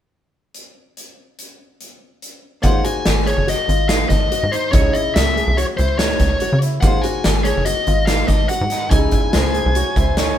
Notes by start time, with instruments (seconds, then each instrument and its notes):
0.55 closed hi-hat
0.97 closed hi-hat
1.39 closed hi-hat
1.81 closed hi-hat
2.22 closed hi-hat
2.62 analog synth bass G#1, hollow-body jazz guitar A#3 D#4 G#4 C5, grand piano F4, lead electric guitar F#5, kick, closed hi-hat
2.85 grand piano F#4, lead electric guitar G#5, closed hi-hat
3.06 analog synth bass G#1, snare, closed hi-hat
3.27 grand piano G#4, lead electric guitar C#5, closed hi-hat
3.37 analog synth bass F#1
3.47 grand piano F#4, lead electric guitar D#5, snare, closed hi-hat
3.68 analog synth bass G#1, grand piano F4, closed hi-hat
3.89 grand piano D#4, lead electric guitar F5, snare, closed hi-hat
4.09 analog synth bass G#1, lead electric guitar D#5, kick, snare, closed hi-hat
4.32 grand piano F#4, closed hi-hat
4.43 analog synth bass G#2
4.51 grand piano D#4, lead electric guitar C5, closed hi-hat
4.72 analog synth bass C#2, hollow-body jazz guitar C#4 E4 G#4 C#5, grand piano D#4, lead electric guitar C#5, kick, closed hi-hat
4.93 grand piano E4, lead electric guitar D#5, closed hi-hat
5.15 analog synth bass C#2, lead electric guitar E5, snare, closed hi-hat
5.36 grand piano G#4, closed hi-hat
5.47 analog synth bass C2
5.57 grand piano F#4, lead electric guitar C#5, closed hi-hat
5.77 analog synth bass C#2, grand piano E4, lead electric guitar C5, closed hi-hat
5.98 grand piano D#4, lead electric guitar C#5, snare, closed hi-hat
6.20 analog synth bass C#2, kick, snare, closed hi-hat
6.40 grand piano F#4, closed hi-hat
6.53 analog synth bass C#3
6.62 grand piano E4, closed hi-hat
6.81 analog synth bass G#1, hollow-body jazz guitar A#3 D#4 G#4, grand piano F4, lead electric guitar F#5, kick, closed hi-hat, shaker
6.85 hollow-body jazz guitar C5
7.02 grand piano F#4, lead electric guitar G#5, closed hi-hat
7.24 analog synth bass G#1, snare, closed hi-hat
7.44 grand piano G#4, lead electric guitar C#5, snare, closed hi-hat
7.57 analog synth bass F#1
7.65 grand piano F#4, lead electric guitar D#5, closed hi-hat, shaker
7.87 analog synth bass G#1, grand piano F4, closed hi-hat
8.06 grand piano D#4, lead electric guitar F5, snare, closed hi-hat
8.28 analog synth bass G#1, lead electric guitar D#5, kick, snare, closed hi-hat, shaker
8.49 grand piano F#4, lead electric guitar F#5, closed hi-hat, shaker
8.61 analog synth bass G#2
8.70 grand piano D#4, snare, closed hi-hat, shaker
8.90 analog synth bass C#2, hollow-body jazz guitar C#4 D#4 E4 G#4, grand piano D#4, lead electric guitar G#5, kick, closed hi-hat, shaker
9.11 grand piano E4, kick, closed hi-hat, shaker
9.33 analog synth bass C#2, alto saxophone C5, snare, closed hi-hat, shaker
9.54 grand piano G#4, closed hi-hat, shaker
9.66 analog synth bass C2
9.75 grand piano F#4, alto saxophone C#5, closed hi-hat, shaker
9.96 analog synth bass C#2, grand piano E4, alto saxophone C5, kick, closed hi-hat, shaker
10.17 grand piano D#4, alto saxophone C#5, snare, closed hi-hat